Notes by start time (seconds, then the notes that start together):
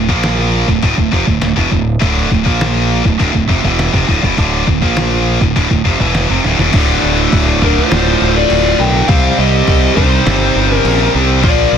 Already playing: A2
0.08 A#1 A#2 F3 A#3, kick
0.23 snare, open hi-hat
0.68 D1 D2 A2, kick
0.82 D1 D2 A2, kick, open hi-hat
0.97 D1 D2 A2, kick
1.11 F1 F2 C3, kick
1.27 D1 D2 A2, kick
1.41 D1 D2 A2, snare, open hi-hat
1.56 E1 E2 B2, kick
1.70 D1 D2 A2, kick
2.00 D1 D2 A2 D3, kick, open hi-hat
2.30 D1 D2 A2, kick
2.44 A#1 A#2 F3 A#3, kick
2.61 snare, open hi-hat
3.05 D1 D2 A2, kick
3.19 D1 D2 A2, kick, open hi-hat
3.34 D1 D2 A2, kick
3.49 F1 F2 C3, kick
3.64 E1 E2 B2 E3, kick
3.79 snare, open hi-hat
3.93 F1 F2 C3, kick
4.08 D1 D2 A2, kick
4.23 E1 E2 B2, kick
4.38 D1 D2 A2 D3, kick, open hi-hat
4.67 D1 D2 A2, kick
4.82 A#1 A#2 F3 A#3, kick
4.97 snare, open hi-hat
5.41 D1 D2 A2, kick
5.56 D1 D2 A2, kick, open hi-hat
5.71 D1 D2 A2, kick
5.85 F1 F2 C3, kick
6.00 E1 E2 B2 E3, kick
6.14 snare, open hi-hat
6.30 F1 F2 C3
6.44 D1 D2 A2, snare
6.58 E1 E2 B2, snare
6.73 D1 D2 A2 D3 F3 A3 D4 A4 D5, kick, crash
7.03 D1
7.33 D1, kick, crash
7.61 D2 A2 D3 D4 A#4, kick
7.78 F4 C5
7.90 D1 D2 A2 D3, snare, crash
8.21 D1
8.36 F4 D5
8.50 D1, crash
8.79 B1 A#4 G5
9.07 C2 C3 D#3 G3 C4 G4 C5 F5, kick, crash
9.11 C4
9.38 C2 G4 D#5
9.67 C2, kick, crash
9.95 C2 C3 G3 C4 D#4 C5, kick
10.25 G1 C3 G3 C4, snare, crash
10.55 G1
10.74 C#4 A#4
10.84 A#1, crash
11.15 C2
11.42 A#1 A#2 D3 F3 A#3 F4 A#4 D5, kick, crash
11.72 A#1